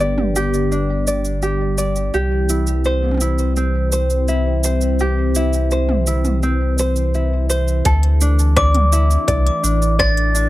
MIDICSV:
0, 0, Header, 1, 6, 480
1, 0, Start_track
1, 0, Tempo, 714286
1, 1439, Time_signature, 4, 2, 24, 8
1, 7051, End_track
2, 0, Start_track
2, 0, Title_t, "Glockenspiel"
2, 0, Program_c, 0, 9
2, 5760, Note_on_c, 0, 86, 74
2, 5988, Note_off_c, 0, 86, 0
2, 6717, Note_on_c, 0, 93, 80
2, 6855, Note_off_c, 0, 93, 0
2, 7051, End_track
3, 0, Start_track
3, 0, Title_t, "Ukulele"
3, 0, Program_c, 1, 24
3, 0, Note_on_c, 1, 62, 63
3, 0, Note_on_c, 1, 67, 54
3, 2, Note_on_c, 1, 74, 57
3, 239, Note_off_c, 1, 67, 0
3, 242, Note_on_c, 1, 67, 59
3, 474, Note_off_c, 1, 62, 0
3, 482, Note_on_c, 1, 62, 57
3, 714, Note_off_c, 1, 74, 0
3, 722, Note_on_c, 1, 74, 56
3, 955, Note_off_c, 1, 67, 0
3, 957, Note_on_c, 1, 67, 54
3, 1187, Note_off_c, 1, 74, 0
3, 1195, Note_on_c, 1, 74, 64
3, 1437, Note_off_c, 1, 67, 0
3, 1437, Note_on_c, 1, 67, 76
3, 1485, Note_off_c, 1, 74, 0
3, 1488, Note_off_c, 1, 62, 0
3, 1677, Note_on_c, 1, 64, 52
3, 1919, Note_on_c, 1, 72, 65
3, 2155, Note_off_c, 1, 64, 0
3, 2158, Note_on_c, 1, 64, 61
3, 2395, Note_off_c, 1, 64, 0
3, 2397, Note_on_c, 1, 60, 57
3, 2629, Note_off_c, 1, 72, 0
3, 2637, Note_on_c, 1, 72, 61
3, 2875, Note_off_c, 1, 67, 0
3, 2878, Note_on_c, 1, 64, 57
3, 3112, Note_off_c, 1, 72, 0
3, 3120, Note_on_c, 1, 72, 64
3, 3364, Note_on_c, 1, 67, 75
3, 3600, Note_off_c, 1, 64, 0
3, 3602, Note_on_c, 1, 64, 57
3, 3834, Note_off_c, 1, 72, 0
3, 3842, Note_on_c, 1, 72, 63
3, 4077, Note_off_c, 1, 60, 0
3, 4080, Note_off_c, 1, 64, 0
3, 4080, Note_on_c, 1, 64, 54
3, 4317, Note_off_c, 1, 64, 0
3, 4320, Note_on_c, 1, 60, 63
3, 4557, Note_off_c, 1, 72, 0
3, 4565, Note_on_c, 1, 72, 60
3, 4801, Note_on_c, 1, 64, 53
3, 5030, Note_off_c, 1, 72, 0
3, 5038, Note_on_c, 1, 72, 62
3, 5275, Note_off_c, 1, 67, 0
3, 5278, Note_on_c, 1, 69, 85
3, 5326, Note_off_c, 1, 72, 0
3, 5327, Note_off_c, 1, 60, 0
3, 5520, Note_on_c, 1, 62, 63
3, 5540, Note_off_c, 1, 64, 0
3, 5759, Note_on_c, 1, 74, 69
3, 5996, Note_on_c, 1, 64, 64
3, 6226, Note_off_c, 1, 74, 0
3, 6234, Note_on_c, 1, 74, 72
3, 6466, Note_off_c, 1, 62, 0
3, 6474, Note_on_c, 1, 62, 59
3, 6705, Note_off_c, 1, 74, 0
3, 6713, Note_on_c, 1, 74, 66
3, 6945, Note_off_c, 1, 62, 0
3, 6953, Note_on_c, 1, 62, 61
3, 7051, Note_off_c, 1, 62, 0
3, 7051, Note_off_c, 1, 64, 0
3, 7051, Note_off_c, 1, 69, 0
3, 7051, Note_off_c, 1, 74, 0
3, 7051, End_track
4, 0, Start_track
4, 0, Title_t, "Analog synth pad"
4, 0, Program_c, 2, 89
4, 0, Note_on_c, 2, 50, 83
4, 0, Note_on_c, 2, 55, 84
4, 0, Note_on_c, 2, 59, 77
4, 0, Note_on_c, 2, 67, 74
4, 1436, Note_off_c, 2, 50, 0
4, 1437, Note_off_c, 2, 59, 0
4, 1440, Note_on_c, 2, 52, 71
4, 1560, Note_on_c, 2, 60, 87
4, 5276, Note_off_c, 2, 55, 0
4, 5460, Note_on_c, 2, 57, 76
4, 5940, Note_on_c, 2, 62, 87
4, 6445, Note_off_c, 2, 67, 0
4, 6524, Note_off_c, 2, 60, 0
4, 6679, Note_on_c, 2, 69, 71
4, 7051, Note_off_c, 2, 52, 0
4, 7051, Note_off_c, 2, 57, 0
4, 7051, Note_off_c, 2, 62, 0
4, 7051, Note_off_c, 2, 69, 0
4, 7051, End_track
5, 0, Start_track
5, 0, Title_t, "Sub bass"
5, 0, Program_c, 3, 38
5, 0, Note_on_c, 3, 31, 79
5, 1416, Note_off_c, 3, 31, 0
5, 1441, Note_on_c, 3, 36, 84
5, 5256, Note_off_c, 3, 36, 0
5, 5279, Note_on_c, 3, 38, 95
5, 6165, Note_off_c, 3, 38, 0
5, 6237, Note_on_c, 3, 36, 92
5, 6386, Note_off_c, 3, 36, 0
5, 6478, Note_on_c, 3, 33, 78
5, 7051, Note_off_c, 3, 33, 0
5, 7051, End_track
6, 0, Start_track
6, 0, Title_t, "Drums"
6, 0, Note_on_c, 9, 69, 29
6, 67, Note_off_c, 9, 69, 0
6, 119, Note_on_c, 9, 45, 69
6, 187, Note_off_c, 9, 45, 0
6, 240, Note_on_c, 9, 69, 60
6, 307, Note_off_c, 9, 69, 0
6, 361, Note_on_c, 9, 69, 36
6, 428, Note_off_c, 9, 69, 0
6, 482, Note_on_c, 9, 69, 29
6, 549, Note_off_c, 9, 69, 0
6, 720, Note_on_c, 9, 69, 64
6, 787, Note_off_c, 9, 69, 0
6, 837, Note_on_c, 9, 69, 39
6, 905, Note_off_c, 9, 69, 0
6, 956, Note_on_c, 9, 69, 25
6, 1023, Note_off_c, 9, 69, 0
6, 1196, Note_on_c, 9, 69, 63
6, 1263, Note_off_c, 9, 69, 0
6, 1315, Note_on_c, 9, 69, 37
6, 1382, Note_off_c, 9, 69, 0
6, 1437, Note_on_c, 9, 69, 24
6, 1504, Note_off_c, 9, 69, 0
6, 1674, Note_on_c, 9, 69, 64
6, 1741, Note_off_c, 9, 69, 0
6, 1792, Note_on_c, 9, 69, 36
6, 1859, Note_off_c, 9, 69, 0
6, 1912, Note_on_c, 9, 69, 27
6, 1979, Note_off_c, 9, 69, 0
6, 2032, Note_on_c, 9, 45, 29
6, 2052, Note_off_c, 9, 45, 0
6, 2052, Note_on_c, 9, 45, 36
6, 2074, Note_off_c, 9, 45, 0
6, 2074, Note_on_c, 9, 45, 37
6, 2093, Note_off_c, 9, 45, 0
6, 2093, Note_on_c, 9, 45, 46
6, 2113, Note_off_c, 9, 45, 0
6, 2113, Note_on_c, 9, 45, 49
6, 2134, Note_off_c, 9, 45, 0
6, 2134, Note_on_c, 9, 45, 56
6, 2154, Note_on_c, 9, 69, 60
6, 2202, Note_off_c, 9, 45, 0
6, 2221, Note_off_c, 9, 69, 0
6, 2273, Note_on_c, 9, 69, 35
6, 2340, Note_off_c, 9, 69, 0
6, 2394, Note_on_c, 9, 69, 28
6, 2461, Note_off_c, 9, 69, 0
6, 2634, Note_on_c, 9, 69, 63
6, 2701, Note_off_c, 9, 69, 0
6, 2755, Note_on_c, 9, 69, 38
6, 2822, Note_off_c, 9, 69, 0
6, 2875, Note_on_c, 9, 69, 27
6, 2942, Note_off_c, 9, 69, 0
6, 3115, Note_on_c, 9, 69, 66
6, 3182, Note_off_c, 9, 69, 0
6, 3233, Note_on_c, 9, 69, 34
6, 3300, Note_off_c, 9, 69, 0
6, 3354, Note_on_c, 9, 69, 26
6, 3422, Note_off_c, 9, 69, 0
6, 3594, Note_on_c, 9, 69, 62
6, 3662, Note_off_c, 9, 69, 0
6, 3716, Note_on_c, 9, 69, 37
6, 3783, Note_off_c, 9, 69, 0
6, 3836, Note_on_c, 9, 69, 29
6, 3904, Note_off_c, 9, 69, 0
6, 3957, Note_on_c, 9, 45, 67
6, 4024, Note_off_c, 9, 45, 0
6, 4077, Note_on_c, 9, 69, 62
6, 4144, Note_off_c, 9, 69, 0
6, 4197, Note_on_c, 9, 45, 56
6, 4198, Note_on_c, 9, 69, 36
6, 4264, Note_off_c, 9, 45, 0
6, 4265, Note_off_c, 9, 69, 0
6, 4319, Note_on_c, 9, 69, 30
6, 4386, Note_off_c, 9, 69, 0
6, 4557, Note_on_c, 9, 69, 60
6, 4625, Note_off_c, 9, 69, 0
6, 4677, Note_on_c, 9, 69, 39
6, 4744, Note_off_c, 9, 69, 0
6, 4800, Note_on_c, 9, 69, 26
6, 4867, Note_off_c, 9, 69, 0
6, 5039, Note_on_c, 9, 69, 67
6, 5106, Note_off_c, 9, 69, 0
6, 5159, Note_on_c, 9, 69, 36
6, 5226, Note_off_c, 9, 69, 0
6, 5276, Note_on_c, 9, 42, 66
6, 5277, Note_on_c, 9, 69, 31
6, 5278, Note_on_c, 9, 36, 91
6, 5344, Note_off_c, 9, 42, 0
6, 5344, Note_off_c, 9, 69, 0
6, 5345, Note_off_c, 9, 36, 0
6, 5397, Note_on_c, 9, 42, 46
6, 5464, Note_off_c, 9, 42, 0
6, 5516, Note_on_c, 9, 69, 74
6, 5583, Note_off_c, 9, 69, 0
6, 5638, Note_on_c, 9, 69, 45
6, 5705, Note_off_c, 9, 69, 0
6, 5756, Note_on_c, 9, 37, 106
6, 5756, Note_on_c, 9, 42, 70
6, 5756, Note_on_c, 9, 69, 36
6, 5757, Note_on_c, 9, 36, 110
6, 5823, Note_off_c, 9, 37, 0
6, 5823, Note_off_c, 9, 42, 0
6, 5823, Note_off_c, 9, 69, 0
6, 5824, Note_off_c, 9, 36, 0
6, 5877, Note_on_c, 9, 42, 43
6, 5877, Note_on_c, 9, 45, 70
6, 5944, Note_off_c, 9, 42, 0
6, 5944, Note_off_c, 9, 45, 0
6, 5997, Note_on_c, 9, 69, 75
6, 6064, Note_off_c, 9, 69, 0
6, 6119, Note_on_c, 9, 69, 46
6, 6186, Note_off_c, 9, 69, 0
6, 6236, Note_on_c, 9, 36, 92
6, 6237, Note_on_c, 9, 42, 67
6, 6237, Note_on_c, 9, 69, 33
6, 6303, Note_off_c, 9, 36, 0
6, 6304, Note_off_c, 9, 42, 0
6, 6304, Note_off_c, 9, 69, 0
6, 6361, Note_on_c, 9, 42, 46
6, 6428, Note_off_c, 9, 42, 0
6, 6478, Note_on_c, 9, 69, 73
6, 6545, Note_off_c, 9, 69, 0
6, 6600, Note_on_c, 9, 69, 45
6, 6667, Note_off_c, 9, 69, 0
6, 6716, Note_on_c, 9, 36, 97
6, 6718, Note_on_c, 9, 37, 104
6, 6718, Note_on_c, 9, 42, 70
6, 6718, Note_on_c, 9, 69, 31
6, 6783, Note_off_c, 9, 36, 0
6, 6785, Note_off_c, 9, 37, 0
6, 6785, Note_off_c, 9, 42, 0
6, 6785, Note_off_c, 9, 69, 0
6, 6836, Note_on_c, 9, 42, 43
6, 6904, Note_off_c, 9, 42, 0
6, 6956, Note_on_c, 9, 69, 77
6, 7023, Note_off_c, 9, 69, 0
6, 7051, End_track
0, 0, End_of_file